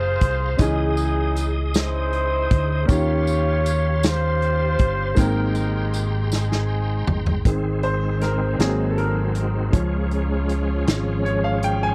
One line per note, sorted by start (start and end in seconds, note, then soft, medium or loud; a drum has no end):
0.00 0.17 F#1 medium
0.00 0.54 C3 soft
0.00 0.54 A#3 medium
0.00 0.55 F4 soft
0.00 0.57 F4 medium
0.00 0.56 G#4 medium
0.00 0.59 G#4 medium
0.00 2.85 G#4 medium
0.00 0.60 C5 loud
0.00 0.58 F5 medium
0.00 0.58 A#5 medium
0.00 0.58 C6 medium
0.21 0.57 C2 medium
0.21 kick medium
0.21 closed hi-hat medium
0.57 2.46 C#2 medium
0.57 1.70 C#3 medium
0.57 2.85 E3 medium
0.57 2.83 C#4 medium
0.57 1.48 G#4 medium
0.57 2.84 D#5 medium
0.57 2.86 D#5 medium
0.57 2.86 D#6 medium
0.57 kick loud
0.57 closed hi-hat medium
0.57 tambourine medium
0.61 1.59 D#4 medium
0.61 1.59 E4 medium
0.61 2.85 G#4 medium
0.97 closed hi-hat soft
0.97 tambourine medium
1.36 closed hi-hat medium
1.36 tambourine soft
1.74 2.86 D#4 medium
1.74 2.85 E4 medium
1.74 2.86 C5 loud
1.74 snare loud
1.74 closed hi-hat medium
1.74 tambourine medium
2.13 closed hi-hat soft
2.51 2.86 D2 medium
2.51 kick medium
2.51 closed hi-hat medium
2.85 4.75 D#2 loud
2.85 3.99 D#3 medium
2.85 5.12 A#3 medium
2.85 5.12 C#4 medium
2.85 5.13 F4 medium
2.85 3.99 F4 medium
2.85 3.99 G4 medium
2.85 4.03 C#5 loud
2.85 5.15 F5 medium
2.85 kick loud
2.85 tambourine soft
2.90 5.15 G4 medium
2.90 5.14 G4 medium
2.90 7.42 C6 medium
2.90 closed hi-hat medium
3.27 closed hi-hat medium
3.27 tambourine medium
3.66 closed hi-hat medium
3.66 tambourine medium
4.03 5.15 F4 medium
4.03 5.15 G4 medium
4.03 5.19 C5 loud
4.03 snare loud
4.03 closed hi-hat medium
4.03 tambourine medium
4.42 closed hi-hat soft
4.79 5.14 G1 medium
4.79 kick medium
4.79 closed hi-hat medium
5.15 7.03 G#1 medium
5.15 6.27 G#2 medium
5.15 7.40 G#3 medium
5.15 7.44 G#3 medium
5.15 7.41 A#3 soft
5.15 7.42 C4 medium
5.15 7.44 A#5 medium
5.15 kick loud
5.15 closed hi-hat medium
5.15 tambourine medium
5.19 6.29 D#4 medium
5.19 6.29 G4 medium
5.19 6.06 A#4 medium
5.19 7.42 G5 medium
5.19 7.44 G5 medium
5.55 closed hi-hat soft
5.55 tambourine soft
5.93 closed hi-hat medium
5.93 tambourine medium
6.32 7.43 C4 medium
6.32 7.42 D#4 medium
6.32 7.14 G#4 medium
6.32 snare medium
6.32 tambourine medium
6.52 snare medium
7.07 7.42 G1 medium
7.07 floor tom medium
7.26 floor tom medium
7.45 8.55 G#1 medium
7.45 8.55 D#3 soft
7.45 8.58 D#3 medium
7.45 9.72 D#3 medium
7.45 11.95 G#3 medium
7.45 8.56 G#3 soft
7.45 11.95 G#3 medium
7.45 9.71 C4 medium
7.45 8.58 C4 medium
7.45 8.56 C4 soft
7.45 9.71 D#4 medium
7.45 8.59 G#4 medium
7.45 9.72 C5 medium
7.45 kick loud
7.45 closed hi-hat medium
7.83 8.23 C5 loud
7.83 closed hi-hat soft
8.21 8.61 A#4 medium
8.21 snare soft
8.21 closed hi-hat medium
8.58 9.69 G#1 medium
8.58 9.10 F#3 medium
8.58 9.72 F#3 medium
8.58 9.10 A#3 soft
8.58 9.72 C4 medium
8.58 9.10 C4 medium
8.58 9.72 F#4 medium
8.58 8.92 G#4 medium
8.58 snare loud
8.58 closed hi-hat medium
8.91 8.98 A4 medium
8.98 10.84 A#4 medium
8.98 closed hi-hat soft
9.35 closed hi-hat medium
9.72 10.83 C#2 medium
9.72 11.95 F3 soft
9.72 11.95 F3 medium
9.72 11.95 G#3 soft
9.72 11.95 C#4 medium
9.72 11.95 F4 medium
9.72 11.95 G#4 medium
9.72 11.95 C#5 medium
9.72 kick loud
9.72 closed hi-hat medium
10.11 closed hi-hat medium
10.49 closed hi-hat medium
10.87 11.95 G#1 medium
10.87 snare loud
10.87 closed hi-hat medium
11.25 11.43 C#5 medium
11.25 closed hi-hat soft
11.44 11.64 F5 medium
11.63 11.83 G5 medium
11.63 closed hi-hat medium
11.83 11.95 G#5 loud